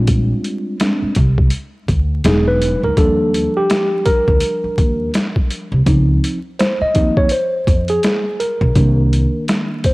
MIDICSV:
0, 0, Header, 1, 5, 480
1, 0, Start_track
1, 0, Tempo, 722892
1, 55, Time_signature, 4, 2, 24, 8
1, 6598, End_track
2, 0, Start_track
2, 0, Title_t, "Tine electric piano"
2, 0, Program_c, 0, 4
2, 0, Note_on_c, 0, 55, 59
2, 0, Note_on_c, 0, 56, 49
2, 0, Note_on_c, 0, 60, 45
2, 0, Note_on_c, 0, 62, 60
2, 0, Note_on_c, 0, 65, 71
2, 508, Note_off_c, 0, 55, 0
2, 510, Note_off_c, 0, 56, 0
2, 511, Note_off_c, 0, 60, 0
2, 513, Note_off_c, 0, 62, 0
2, 513, Note_off_c, 0, 65, 0
2, 534, Note_on_c, 0, 56, 45
2, 535, Note_on_c, 0, 55, 42
2, 538, Note_on_c, 0, 60, 42
2, 540, Note_on_c, 0, 62, 53
2, 751, Note_off_c, 0, 55, 0
2, 751, Note_off_c, 0, 56, 0
2, 753, Note_off_c, 0, 60, 0
2, 754, Note_off_c, 0, 62, 0
2, 1493, Note_on_c, 0, 54, 54
2, 1498, Note_on_c, 0, 56, 48
2, 1502, Note_on_c, 0, 63, 68
2, 1502, Note_on_c, 0, 68, 88
2, 1634, Note_off_c, 0, 68, 0
2, 1645, Note_on_c, 0, 71, 111
2, 1866, Note_off_c, 0, 71, 0
2, 1888, Note_on_c, 0, 70, 82
2, 1950, Note_off_c, 0, 54, 0
2, 1952, Note_off_c, 0, 56, 0
2, 1955, Note_off_c, 0, 63, 0
2, 1972, Note_on_c, 0, 53, 53
2, 1976, Note_on_c, 0, 55, 53
2, 1979, Note_on_c, 0, 62, 61
2, 1979, Note_on_c, 0, 69, 95
2, 1981, Note_off_c, 0, 70, 0
2, 2369, Note_on_c, 0, 67, 90
2, 2374, Note_off_c, 0, 69, 0
2, 2693, Note_on_c, 0, 70, 94
2, 2709, Note_off_c, 0, 67, 0
2, 3388, Note_off_c, 0, 70, 0
2, 3867, Note_off_c, 0, 53, 0
2, 3869, Note_off_c, 0, 55, 0
2, 3870, Note_off_c, 0, 62, 0
2, 3891, Note_on_c, 0, 53, 55
2, 3897, Note_on_c, 0, 60, 46
2, 3901, Note_on_c, 0, 63, 59
2, 4232, Note_off_c, 0, 53, 0
2, 4235, Note_off_c, 0, 60, 0
2, 4237, Note_off_c, 0, 63, 0
2, 4377, Note_on_c, 0, 72, 83
2, 4525, Note_on_c, 0, 75, 104
2, 4527, Note_off_c, 0, 72, 0
2, 4608, Note_on_c, 0, 53, 45
2, 4612, Note_on_c, 0, 60, 44
2, 4615, Note_on_c, 0, 63, 55
2, 4762, Note_on_c, 0, 73, 91
2, 4770, Note_off_c, 0, 75, 0
2, 4827, Note_off_c, 0, 53, 0
2, 4829, Note_off_c, 0, 60, 0
2, 4831, Note_off_c, 0, 63, 0
2, 4857, Note_on_c, 0, 72, 90
2, 4858, Note_off_c, 0, 73, 0
2, 5244, Note_on_c, 0, 68, 87
2, 5254, Note_off_c, 0, 72, 0
2, 5577, Note_on_c, 0, 70, 72
2, 5587, Note_off_c, 0, 68, 0
2, 5813, Note_on_c, 0, 51, 49
2, 5817, Note_on_c, 0, 58, 52
2, 5820, Note_on_c, 0, 62, 52
2, 6269, Note_off_c, 0, 70, 0
2, 6548, Note_on_c, 0, 72, 86
2, 6598, Note_off_c, 0, 51, 0
2, 6598, Note_off_c, 0, 58, 0
2, 6598, Note_off_c, 0, 62, 0
2, 6598, Note_off_c, 0, 72, 0
2, 6598, End_track
3, 0, Start_track
3, 0, Title_t, "Upright bass"
3, 0, Program_c, 1, 32
3, 0, Note_on_c, 1, 34, 89
3, 207, Note_off_c, 1, 34, 0
3, 773, Note_on_c, 1, 36, 86
3, 971, Note_off_c, 1, 36, 0
3, 1252, Note_on_c, 1, 38, 81
3, 1451, Note_off_c, 1, 38, 0
3, 1492, Note_on_c, 1, 28, 107
3, 1811, Note_off_c, 1, 28, 0
3, 1882, Note_on_c, 1, 38, 87
3, 1959, Note_off_c, 1, 38, 0
3, 1971, Note_on_c, 1, 39, 96
3, 2291, Note_off_c, 1, 39, 0
3, 2839, Note_on_c, 1, 38, 81
3, 2917, Note_off_c, 1, 38, 0
3, 3172, Note_on_c, 1, 39, 84
3, 3371, Note_off_c, 1, 39, 0
3, 3795, Note_on_c, 1, 36, 83
3, 3875, Note_off_c, 1, 36, 0
3, 3891, Note_on_c, 1, 37, 90
3, 4090, Note_off_c, 1, 37, 0
3, 4619, Note_on_c, 1, 39, 84
3, 4815, Note_off_c, 1, 39, 0
3, 5094, Note_on_c, 1, 41, 84
3, 5292, Note_off_c, 1, 41, 0
3, 5717, Note_on_c, 1, 35, 87
3, 5796, Note_off_c, 1, 35, 0
3, 5815, Note_on_c, 1, 36, 95
3, 6133, Note_off_c, 1, 36, 0
3, 6598, End_track
4, 0, Start_track
4, 0, Title_t, "Muted upright bass strokes"
4, 679, Note_on_c, 9, 29, 45
4, 746, Note_off_c, 9, 29, 0
4, 3080, Note_on_c, 9, 29, 49
4, 3146, Note_off_c, 9, 29, 0
4, 4521, Note_on_c, 9, 29, 43
4, 4588, Note_off_c, 9, 29, 0
4, 6598, End_track
5, 0, Start_track
5, 0, Title_t, "Drums"
5, 49, Note_on_c, 9, 42, 91
5, 52, Note_on_c, 9, 36, 97
5, 115, Note_off_c, 9, 42, 0
5, 118, Note_off_c, 9, 36, 0
5, 296, Note_on_c, 9, 42, 60
5, 362, Note_off_c, 9, 42, 0
5, 531, Note_on_c, 9, 42, 76
5, 538, Note_on_c, 9, 38, 92
5, 597, Note_off_c, 9, 42, 0
5, 604, Note_off_c, 9, 38, 0
5, 764, Note_on_c, 9, 42, 68
5, 774, Note_on_c, 9, 36, 82
5, 830, Note_off_c, 9, 42, 0
5, 840, Note_off_c, 9, 36, 0
5, 917, Note_on_c, 9, 36, 106
5, 984, Note_off_c, 9, 36, 0
5, 999, Note_on_c, 9, 42, 94
5, 1065, Note_off_c, 9, 42, 0
5, 1251, Note_on_c, 9, 36, 87
5, 1252, Note_on_c, 9, 42, 59
5, 1318, Note_off_c, 9, 36, 0
5, 1318, Note_off_c, 9, 42, 0
5, 1490, Note_on_c, 9, 42, 87
5, 1499, Note_on_c, 9, 38, 112
5, 1556, Note_off_c, 9, 42, 0
5, 1565, Note_off_c, 9, 38, 0
5, 1738, Note_on_c, 9, 42, 69
5, 1805, Note_off_c, 9, 42, 0
5, 1973, Note_on_c, 9, 36, 108
5, 1973, Note_on_c, 9, 42, 76
5, 2039, Note_off_c, 9, 36, 0
5, 2039, Note_off_c, 9, 42, 0
5, 2220, Note_on_c, 9, 42, 70
5, 2286, Note_off_c, 9, 42, 0
5, 2455, Note_on_c, 9, 42, 81
5, 2462, Note_on_c, 9, 38, 108
5, 2521, Note_off_c, 9, 42, 0
5, 2528, Note_off_c, 9, 38, 0
5, 2692, Note_on_c, 9, 42, 68
5, 2697, Note_on_c, 9, 36, 92
5, 2758, Note_off_c, 9, 42, 0
5, 2763, Note_off_c, 9, 36, 0
5, 2840, Note_on_c, 9, 36, 96
5, 2906, Note_off_c, 9, 36, 0
5, 2923, Note_on_c, 9, 42, 100
5, 2990, Note_off_c, 9, 42, 0
5, 3173, Note_on_c, 9, 36, 85
5, 3173, Note_on_c, 9, 42, 69
5, 3239, Note_off_c, 9, 36, 0
5, 3239, Note_off_c, 9, 42, 0
5, 3410, Note_on_c, 9, 42, 79
5, 3419, Note_on_c, 9, 38, 100
5, 3477, Note_off_c, 9, 42, 0
5, 3486, Note_off_c, 9, 38, 0
5, 3557, Note_on_c, 9, 36, 79
5, 3623, Note_off_c, 9, 36, 0
5, 3653, Note_on_c, 9, 42, 67
5, 3720, Note_off_c, 9, 42, 0
5, 3892, Note_on_c, 9, 42, 84
5, 3894, Note_on_c, 9, 36, 92
5, 3959, Note_off_c, 9, 42, 0
5, 3960, Note_off_c, 9, 36, 0
5, 4142, Note_on_c, 9, 42, 72
5, 4208, Note_off_c, 9, 42, 0
5, 4378, Note_on_c, 9, 42, 69
5, 4385, Note_on_c, 9, 38, 99
5, 4444, Note_off_c, 9, 42, 0
5, 4451, Note_off_c, 9, 38, 0
5, 4612, Note_on_c, 9, 42, 76
5, 4618, Note_on_c, 9, 36, 88
5, 4679, Note_off_c, 9, 42, 0
5, 4685, Note_off_c, 9, 36, 0
5, 4761, Note_on_c, 9, 36, 103
5, 4827, Note_off_c, 9, 36, 0
5, 4841, Note_on_c, 9, 42, 106
5, 4908, Note_off_c, 9, 42, 0
5, 5094, Note_on_c, 9, 36, 84
5, 5096, Note_on_c, 9, 42, 66
5, 5160, Note_off_c, 9, 36, 0
5, 5163, Note_off_c, 9, 42, 0
5, 5233, Note_on_c, 9, 42, 55
5, 5299, Note_off_c, 9, 42, 0
5, 5332, Note_on_c, 9, 42, 73
5, 5341, Note_on_c, 9, 38, 114
5, 5399, Note_off_c, 9, 42, 0
5, 5408, Note_off_c, 9, 38, 0
5, 5579, Note_on_c, 9, 42, 71
5, 5645, Note_off_c, 9, 42, 0
5, 5718, Note_on_c, 9, 36, 63
5, 5785, Note_off_c, 9, 36, 0
5, 5814, Note_on_c, 9, 42, 78
5, 5815, Note_on_c, 9, 36, 102
5, 5880, Note_off_c, 9, 42, 0
5, 5881, Note_off_c, 9, 36, 0
5, 6063, Note_on_c, 9, 42, 67
5, 6130, Note_off_c, 9, 42, 0
5, 6298, Note_on_c, 9, 42, 75
5, 6305, Note_on_c, 9, 38, 92
5, 6364, Note_off_c, 9, 42, 0
5, 6371, Note_off_c, 9, 38, 0
5, 6535, Note_on_c, 9, 42, 75
5, 6539, Note_on_c, 9, 36, 85
5, 6598, Note_off_c, 9, 36, 0
5, 6598, Note_off_c, 9, 42, 0
5, 6598, End_track
0, 0, End_of_file